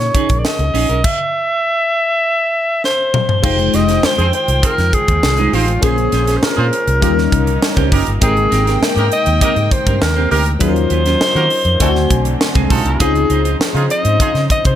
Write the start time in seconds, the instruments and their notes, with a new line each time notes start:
Already playing: fm electric piano C#4 D#4 F4 G#4 A#4, alto saxophone C#5
0.01 muted clean electric guitar stroke
0.15 clean electric guitar C#4 D#4 G#4, kick, closed hi-hat
0.29 fingered electric bass A#1, muted clean electric guitar stroke, kick, closed hi-hat
0.39 alto saxophone D5
0.44 alto saxophone D#5, muted clean electric guitar stroke, snare
0.59 fingered electric bass C#2, muted clean electric guitar stroke, closed hi-hat
0.74 fingered electric bass A#1, clean electric guitar C#4 D#4 G#4, open hi-hat
0.89 fingered electric bass B1, clean electric guitar C#4 D#4 A#4, closed hi-hat
1.04 alto saxophone E5, kick, crash
2.84 alto saxophone C5, snare
3.14 mid tom
3.29 floor tom
3.42 fingered electric bass F1, string section D#3 G#3 F4 G5, fm electric piano G#3 D#4 F4 C5 G5, clean electric guitar G#3 D#4 G4, alto saxophone C5, kick, crash
3.58 muted clean electric guitar stroke, closed hi-hat
3.73 fingered electric bass F1, clean electric guitar G#3 D#4 G4, alto saxophone D#5, snare, closed hi-hat
3.88 clean electric guitar G#3 D#4 G4, snare, closed hi-hat
4.03 alto saxophone C5, snare
4.18 fingered electric bass F2, horn section C4 G#4 C5, muted clean electric guitar stroke, closed hi-hat
4.33 alto saxophone C5, closed hi-hat
4.48 fingered electric bass C2, muted clean electric guitar stroke, closed hi-hat
4.63 horn section C4 G#4 C5, alto saxophone A#4, muted clean electric guitar stroke, kick, closed hi-hat
4.78 fingered electric bass F2, muted clean electric guitar stroke, snare, closed hi-hat
4.93 alto saxophone G#4, kick, closed hi-hat
5.08 fingered electric bass D#2, muted clean electric guitar stroke, kick, closed hi-hat
5.23 fingered electric bass C2, muted clean electric guitar stroke, snare
5.38 clean electric guitar G#3 D#4 G#4, closed hi-hat
5.53 fingered electric bass A1, clean electric guitar G#3 D#4 G4, horn section C4 G#4 C5, alto saxophone F4, open hi-hat
5.68 muted clean electric guitar stroke, closed hi-hat
5.81 fingered electric bass A#1, string section C#3 A#3 C#4, fm electric piano A#3 C#4 F4 G#4 C5, clean electric guitar C#4 G#4 C5, alto saxophone G#4, kick, closed hi-hat
5.98 muted clean electric guitar stroke, closed hi-hat
6.12 fingered electric bass A#1, clean electric guitar C#4 G#4 C5, snare, closed hi-hat
6.27 clean electric guitar C#4 G#4 C5, snare, closed hi-hat
6.37 alto saxophone C5
6.43 alto saxophone A#4, muted fingered electric bass stroke, muted clean electric guitar stroke, snare
6.57 fingered electric bass A#2, horn section F4 G#4 C5, muted clean electric guitar stroke
6.73 closed hi-hat
6.87 fingered electric bass C2, muted clean electric guitar stroke, closed hi-hat
7.01 fingered electric bass D#2, fm electric piano G3 C#4 D#4 F4 A#4, string section G3 A#3 C#4 D#4, horn section D#4 G4 A#4, muted clean electric guitar stroke, kick, closed hi-hat
7.17 muted clean electric guitar stroke, snare
7.32 fingered electric bass C2, kick, closed hi-hat
7.47 muted clean electric guitar stroke, closed hi-hat
7.62 muted clean electric guitar stroke, snare
7.76 fingered electric bass C#2, clean electric guitar C#4 G4 C5, kick, closed hi-hat
7.92 fingered electric bass F#1, clean electric guitar C#4 G4 A#4, horn section D#4 G4 A#4, kick, open hi-hat
8.06 fingered electric bass G1, muted clean electric guitar stroke, closed hi-hat
8.21 fingered electric bass G#1, string section C3 G#3 G5, fm electric piano G#3 C4 D#4 A#4 G5, clean electric guitar C4 G4 A#4, alto saxophone G#4, kick, closed hi-hat
8.36 muted clean electric guitar stroke, closed hi-hat
8.51 fingered electric bass G#1, clean electric guitar C4 G4 A#4, snare, closed hi-hat
8.66 clean electric guitar C4 G4 A#4, snare, closed hi-hat
8.81 muted clean electric guitar stroke, snare
8.96 fingered electric bass G#2, horn section D#4 G4 A#4, muted clean electric guitar stroke, closed hi-hat
9.12 alto saxophone D#5, closed hi-hat
9.26 fingered electric bass D#2, muted clean electric guitar stroke, closed hi-hat
9.41 clean electric guitar C4 G4 A#4, horn section D#4 G4 A#4, alto saxophone D#5, kick, closed hi-hat
9.56 fingered electric bass G#2, muted clean electric guitar stroke, closed hi-hat
9.71 alto saxophone C5, muted clean electric guitar stroke, kick, closed hi-hat
9.86 fingered electric bass G2, clean electric guitar C4 G4 A#4, kick, closed hi-hat
10.02 fingered electric bass D#2, alto saxophone A#4, snare
10.16 clean electric guitar C4 G4 C5
10.31 fingered electric bass D2, clean electric guitar C4 G4 A#4, horn section D#4 G4 A#4, alto saxophone A#4, open hi-hat
10.46 muted clean electric guitar stroke, closed hi-hat
10.59 fingered electric bass D#2, string section C#3 F#3 D#4 F4, fm electric piano F#3 C#4 D#4 F4 G#4, clean electric guitar F#3 C#4 F4, alto saxophone C5, kick, closed hi-hat
10.68 fm electric piano A#4
10.75 muted clean electric guitar stroke, closed hi-hat
10.90 fingered electric bass D#2, clean electric guitar F#3 C#4 F4, closed hi-hat
11.06 clean electric guitar F#3 C#4 F4, snare, closed hi-hat
11.21 snare
11.35 fingered electric bass D#3, horn section A#3 F#4 A#4, muted clean electric guitar stroke, closed hi-hat
11.50 open hi-hat
11.65 fingered electric bass F2, muted clean electric guitar stroke, closed hi-hat
11.80 fingered electric bass D2, string section D3 A3 C4, fm electric piano A3 C4 D4 E4 G#5, horn section C4 F#4 A4, muted clean electric guitar stroke, kick, closed hi-hat
11.88 fm electric piano F#4
11.95 muted clean electric guitar stroke, snare
12.10 fingered electric bass B1, kick, closed hi-hat
12.25 muted clean electric guitar stroke, closed hi-hat
12.41 muted clean electric guitar stroke, snare
12.55 fingered electric bass C2, clean electric guitar G#3 C4 G#4, kick, closed hi-hat
12.69 fingered electric bass B1, clean electric guitar G#3 C4 F#4, horn section D#4 F4 A4, kick, open hi-hat
12.85 fingered electric bass C2, muted clean electric guitar stroke, closed hi-hat
13.00 fingered electric bass C#2, string section C#3 F3 D#4 C5, fm electric piano C4 C#4 D#4 F4 G#4, clean electric guitar D#4 F4 C5, alto saxophone G#4, kick, closed hi-hat
13.14 muted clean electric guitar stroke, closed hi-hat
13.30 fingered electric bass C#2, clean electric guitar D#4 F4 C5, closed hi-hat
13.45 clean electric guitar D#4 F4 C5, closed hi-hat
13.60 muted fingered electric bass stroke, muted clean electric guitar stroke, snare
13.75 fingered electric bass C#3, horn section D#4 F4 G#4, muted clean electric guitar stroke, closed hi-hat
13.90 alto saxophone D#5, closed hi-hat
14.05 fingered electric bass G#2, muted clean electric guitar stroke, closed hi-hat
14.20 horn section D#4 F4 G#4, muted clean electric guitar stroke, kick, closed hi-hat
14.35 fingered electric bass C#3, muted clean electric guitar stroke, snare, closed hi-hat
14.50 alto saxophone D#5, kick, closed hi-hat
14.65 fingered electric bass C3, alto saxophone C5, muted clean electric guitar stroke, kick, closed hi-hat